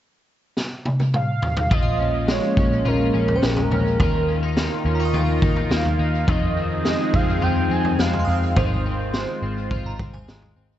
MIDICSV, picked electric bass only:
0, 0, Header, 1, 2, 480
1, 0, Start_track
1, 0, Key_signature, -5, "minor"
1, 0, Tempo, 571429
1, 1436, Time_signature, 4, 2, 24, 8
1, 9061, End_track
2, 0, Start_track
2, 0, Title_t, "Picked electric bass"
2, 0, Program_c, 0, 34
2, 1437, Note_on_c, 0, 34, 82
2, 2006, Note_off_c, 0, 34, 0
2, 2160, Note_on_c, 0, 34, 88
2, 2369, Note_off_c, 0, 34, 0
2, 2397, Note_on_c, 0, 34, 105
2, 2607, Note_off_c, 0, 34, 0
2, 2636, Note_on_c, 0, 34, 78
2, 2847, Note_off_c, 0, 34, 0
2, 2880, Note_on_c, 0, 34, 89
2, 3089, Note_off_c, 0, 34, 0
2, 3119, Note_on_c, 0, 34, 77
2, 3328, Note_off_c, 0, 34, 0
2, 3358, Note_on_c, 0, 39, 86
2, 3926, Note_off_c, 0, 39, 0
2, 4073, Note_on_c, 0, 39, 88
2, 4285, Note_off_c, 0, 39, 0
2, 4312, Note_on_c, 0, 39, 90
2, 4524, Note_off_c, 0, 39, 0
2, 4555, Note_on_c, 0, 39, 89
2, 4766, Note_off_c, 0, 39, 0
2, 4792, Note_on_c, 0, 39, 77
2, 5005, Note_off_c, 0, 39, 0
2, 5031, Note_on_c, 0, 39, 77
2, 5244, Note_off_c, 0, 39, 0
2, 5274, Note_on_c, 0, 41, 93
2, 5845, Note_off_c, 0, 41, 0
2, 5994, Note_on_c, 0, 41, 97
2, 6206, Note_off_c, 0, 41, 0
2, 6235, Note_on_c, 0, 41, 103
2, 6446, Note_off_c, 0, 41, 0
2, 6471, Note_on_c, 0, 41, 89
2, 6684, Note_off_c, 0, 41, 0
2, 6712, Note_on_c, 0, 41, 84
2, 6924, Note_off_c, 0, 41, 0
2, 6952, Note_on_c, 0, 41, 85
2, 7164, Note_off_c, 0, 41, 0
2, 7194, Note_on_c, 0, 32, 89
2, 7765, Note_off_c, 0, 32, 0
2, 7915, Note_on_c, 0, 32, 91
2, 8126, Note_off_c, 0, 32, 0
2, 8153, Note_on_c, 0, 32, 108
2, 8365, Note_off_c, 0, 32, 0
2, 8393, Note_on_c, 0, 32, 89
2, 8605, Note_off_c, 0, 32, 0
2, 8634, Note_on_c, 0, 32, 67
2, 8846, Note_off_c, 0, 32, 0
2, 8873, Note_on_c, 0, 32, 71
2, 9061, Note_off_c, 0, 32, 0
2, 9061, End_track
0, 0, End_of_file